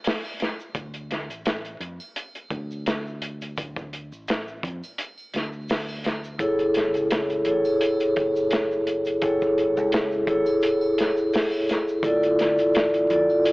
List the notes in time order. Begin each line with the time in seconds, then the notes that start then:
0.04 snare, open hi-hat, shaker
0.24 triangle, shaker
0.40 snare, closed hi-hat
0.60 shaker
0.75 D2, kick, closed hi-hat, shaker
0.94 closed hi-hat, shaker
1.11 snare, closed hi-hat
1.30 A1, closed hi-hat, shaker
1.45 snare, closed hi-hat, shaker
1.65 closed hi-hat, shaker
1.80 F2, closed hi-hat
2.00 triangle, shaker
2.16 closed hi-hat, shaker
2.35 closed hi-hat, shaker
2.51 D2, kick, closed hi-hat
2.71 shaker
2.86 snare, closed hi-hat, shaker
3.07 shaker
3.22 closed hi-hat
3.41 closed hi-hat, shaker
3.57 D2, kick, closed hi-hat, shaker
3.76 kick, shaker
3.93 closed hi-hat
4.12 A1, shaker
4.28 snare, closed hi-hat, shaker
4.48 shaker
4.63 F2, kick, closed hi-hat
4.84 triangle, shaker
4.98 closed hi-hat, shaker
5.18 triangle, shaker
5.33 D2, snare, closed hi-hat
5.52 shaker
5.68 snare, open hi-hat, shaker
5.88 triangle, shaker
6.04 snare, closed hi-hat
6.24 shaker
6.39 F#1 E4 G#4 A4 C#5, kick, closed hi-hat, shaker
6.59 closed hi-hat, shaker
6.74 snare, closed hi-hat
6.94 C#2, closed hi-hat, shaker
7.11 snare, closed hi-hat, shaker
7.30 closed hi-hat, shaker
7.45 A1 E4 G#4 A4 C#5, closed hi-hat
7.65 triangle, shaker
7.81 closed hi-hat, shaker
8.00 closed hi-hat, shaker
8.16 F#1, kick, closed hi-hat
8.36 shaker
8.51 snare, closed hi-hat, shaker
8.71 shaker
8.87 closed hi-hat
9.05 closed hi-hat, shaker
9.21 F#1 E4 G#4 A4 C#5, kick, closed hi-hat, shaker
9.41 kick, shaker
9.58 closed hi-hat
9.77 C#2, shaker
9.92 snare, closed hi-hat, shaker
10.12 shaker
10.27 A1 E4 G#4 A4 C#5, kick, closed hi-hat
10.46 triangle, shaker
10.61 closed hi-hat, shaker
10.81 triangle, shaker
10.98 snare, closed hi-hat
11.17 shaker
11.33 snare, open hi-hat, shaker
11.52 triangle, shaker
11.69 snare, closed hi-hat
11.88 shaker
12.03 D2 E4 F4 A4 D5, kick, closed hi-hat, shaker
12.23 closed hi-hat, shaker
12.39 snare, closed hi-hat
12.58 A1, closed hi-hat, shaker
12.74 snare, closed hi-hat, shaker
12.94 closed hi-hat, shaker
13.10 F2 E4 F4 A4 D5, closed hi-hat
13.29 triangle, shaker
13.45 closed hi-hat, shaker